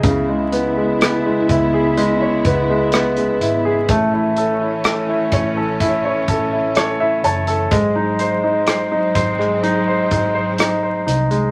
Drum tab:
HH |x-x-x-x-x-x-xxx-|x-x-x-x-x-x-x-xx|x-x-x-x-x-x-x-xx|
SD |----r-------r---|----r-------r---|----r--r----r---|
BD |o-----o---o-----|o-----o-o-o-----|o-----o---o-----|